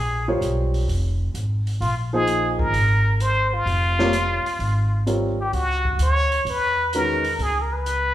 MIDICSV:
0, 0, Header, 1, 6, 480
1, 0, Start_track
1, 0, Tempo, 465477
1, 1869, Time_signature, 4, 2, 24, 8
1, 8397, End_track
2, 0, Start_track
2, 0, Title_t, "Muted trumpet"
2, 0, Program_c, 0, 59
2, 0, Note_on_c, 0, 68, 81
2, 287, Note_off_c, 0, 68, 0
2, 1865, Note_on_c, 0, 65, 88
2, 2014, Note_off_c, 0, 65, 0
2, 2204, Note_on_c, 0, 68, 96
2, 2647, Note_off_c, 0, 68, 0
2, 2668, Note_on_c, 0, 70, 96
2, 3318, Note_on_c, 0, 72, 108
2, 3333, Note_off_c, 0, 70, 0
2, 3647, Note_on_c, 0, 65, 100
2, 3662, Note_off_c, 0, 72, 0
2, 5234, Note_off_c, 0, 65, 0
2, 5579, Note_on_c, 0, 67, 87
2, 5711, Note_off_c, 0, 67, 0
2, 5718, Note_on_c, 0, 66, 103
2, 6160, Note_off_c, 0, 66, 0
2, 6211, Note_on_c, 0, 73, 111
2, 6705, Note_on_c, 0, 71, 116
2, 6720, Note_off_c, 0, 73, 0
2, 7158, Note_off_c, 0, 71, 0
2, 7164, Note_on_c, 0, 70, 93
2, 7656, Note_on_c, 0, 68, 102
2, 7672, Note_off_c, 0, 70, 0
2, 7856, Note_on_c, 0, 70, 78
2, 7872, Note_off_c, 0, 68, 0
2, 7971, Note_on_c, 0, 71, 100
2, 7986, Note_off_c, 0, 70, 0
2, 8397, Note_off_c, 0, 71, 0
2, 8397, End_track
3, 0, Start_track
3, 0, Title_t, "Grand piano"
3, 0, Program_c, 1, 0
3, 287, Note_on_c, 1, 65, 60
3, 288, Note_on_c, 1, 55, 65
3, 292, Note_on_c, 1, 73, 79
3, 293, Note_on_c, 1, 70, 59
3, 293, Note_on_c, 1, 72, 66
3, 883, Note_off_c, 1, 65, 0
3, 884, Note_off_c, 1, 55, 0
3, 886, Note_off_c, 1, 70, 0
3, 886, Note_off_c, 1, 72, 0
3, 886, Note_off_c, 1, 73, 0
3, 2196, Note_on_c, 1, 53, 77
3, 2201, Note_on_c, 1, 58, 67
3, 2202, Note_on_c, 1, 68, 64
3, 2204, Note_on_c, 1, 63, 72
3, 2205, Note_on_c, 1, 72, 75
3, 2798, Note_off_c, 1, 53, 0
3, 2801, Note_off_c, 1, 58, 0
3, 2802, Note_off_c, 1, 68, 0
3, 2803, Note_off_c, 1, 63, 0
3, 2803, Note_off_c, 1, 72, 0
3, 4113, Note_on_c, 1, 55, 73
3, 4120, Note_on_c, 1, 60, 71
3, 4121, Note_on_c, 1, 65, 72
3, 4123, Note_on_c, 1, 73, 82
3, 4124, Note_on_c, 1, 70, 72
3, 4252, Note_off_c, 1, 55, 0
3, 4256, Note_off_c, 1, 60, 0
3, 4256, Note_off_c, 1, 65, 0
3, 4257, Note_off_c, 1, 73, 0
3, 4258, Note_off_c, 1, 70, 0
3, 5223, Note_on_c, 1, 55, 64
3, 5224, Note_on_c, 1, 60, 60
3, 5226, Note_on_c, 1, 65, 59
3, 5237, Note_on_c, 1, 70, 58
3, 5237, Note_on_c, 1, 73, 66
3, 5521, Note_off_c, 1, 55, 0
3, 5521, Note_off_c, 1, 60, 0
3, 5523, Note_off_c, 1, 65, 0
3, 5528, Note_off_c, 1, 70, 0
3, 5528, Note_off_c, 1, 73, 0
3, 7161, Note_on_c, 1, 51, 60
3, 7163, Note_on_c, 1, 56, 60
3, 7165, Note_on_c, 1, 66, 59
3, 7166, Note_on_c, 1, 71, 73
3, 7168, Note_on_c, 1, 61, 63
3, 7449, Note_off_c, 1, 51, 0
3, 7450, Note_off_c, 1, 56, 0
3, 7451, Note_off_c, 1, 66, 0
3, 7451, Note_off_c, 1, 71, 0
3, 7452, Note_off_c, 1, 61, 0
3, 8397, End_track
4, 0, Start_track
4, 0, Title_t, "Upright bass"
4, 0, Program_c, 2, 32
4, 0, Note_on_c, 2, 34, 83
4, 392, Note_off_c, 2, 34, 0
4, 424, Note_on_c, 2, 35, 81
4, 872, Note_off_c, 2, 35, 0
4, 905, Note_on_c, 2, 29, 81
4, 1353, Note_off_c, 2, 29, 0
4, 1383, Note_on_c, 2, 32, 75
4, 1832, Note_off_c, 2, 32, 0
4, 1861, Note_on_c, 2, 34, 80
4, 2632, Note_off_c, 2, 34, 0
4, 2673, Note_on_c, 2, 32, 65
4, 2807, Note_off_c, 2, 32, 0
4, 2813, Note_on_c, 2, 32, 85
4, 3740, Note_off_c, 2, 32, 0
4, 3772, Note_on_c, 2, 29, 86
4, 4547, Note_off_c, 2, 29, 0
4, 4735, Note_on_c, 2, 32, 83
4, 5661, Note_off_c, 2, 32, 0
4, 5698, Note_on_c, 2, 37, 79
4, 6150, Note_off_c, 2, 37, 0
4, 6175, Note_on_c, 2, 38, 80
4, 6627, Note_off_c, 2, 38, 0
4, 6652, Note_on_c, 2, 40, 74
4, 7578, Note_off_c, 2, 40, 0
4, 7617, Note_on_c, 2, 37, 85
4, 8397, Note_off_c, 2, 37, 0
4, 8397, End_track
5, 0, Start_track
5, 0, Title_t, "Muted upright bass strokes"
5, 4588, Note_on_c, 9, 29, 35
5, 4691, Note_off_c, 9, 29, 0
5, 8397, End_track
6, 0, Start_track
6, 0, Title_t, "Drums"
6, 432, Note_on_c, 9, 42, 54
6, 535, Note_off_c, 9, 42, 0
6, 763, Note_on_c, 9, 46, 38
6, 866, Note_off_c, 9, 46, 0
6, 920, Note_on_c, 9, 46, 44
6, 1023, Note_off_c, 9, 46, 0
6, 1389, Note_on_c, 9, 42, 50
6, 1493, Note_off_c, 9, 42, 0
6, 1721, Note_on_c, 9, 46, 41
6, 1824, Note_off_c, 9, 46, 0
6, 1875, Note_on_c, 9, 46, 45
6, 1978, Note_off_c, 9, 46, 0
6, 2345, Note_on_c, 9, 42, 57
6, 2448, Note_off_c, 9, 42, 0
6, 2674, Note_on_c, 9, 36, 66
6, 2778, Note_off_c, 9, 36, 0
6, 2822, Note_on_c, 9, 46, 44
6, 2925, Note_off_c, 9, 46, 0
6, 3303, Note_on_c, 9, 42, 52
6, 3406, Note_off_c, 9, 42, 0
6, 3785, Note_on_c, 9, 46, 39
6, 3889, Note_off_c, 9, 46, 0
6, 4114, Note_on_c, 9, 38, 52
6, 4217, Note_off_c, 9, 38, 0
6, 4259, Note_on_c, 9, 42, 61
6, 4362, Note_off_c, 9, 42, 0
6, 4601, Note_on_c, 9, 46, 42
6, 4704, Note_off_c, 9, 46, 0
6, 4743, Note_on_c, 9, 46, 44
6, 4847, Note_off_c, 9, 46, 0
6, 5229, Note_on_c, 9, 42, 49
6, 5332, Note_off_c, 9, 42, 0
6, 5704, Note_on_c, 9, 46, 43
6, 5808, Note_off_c, 9, 46, 0
6, 6033, Note_on_c, 9, 36, 50
6, 6137, Note_off_c, 9, 36, 0
6, 6177, Note_on_c, 9, 42, 61
6, 6280, Note_off_c, 9, 42, 0
6, 6514, Note_on_c, 9, 46, 41
6, 6617, Note_off_c, 9, 46, 0
6, 6668, Note_on_c, 9, 46, 51
6, 6771, Note_off_c, 9, 46, 0
6, 7145, Note_on_c, 9, 42, 53
6, 7248, Note_off_c, 9, 42, 0
6, 7469, Note_on_c, 9, 46, 42
6, 7572, Note_off_c, 9, 46, 0
6, 7623, Note_on_c, 9, 46, 43
6, 7726, Note_off_c, 9, 46, 0
6, 8107, Note_on_c, 9, 42, 55
6, 8210, Note_off_c, 9, 42, 0
6, 8397, End_track
0, 0, End_of_file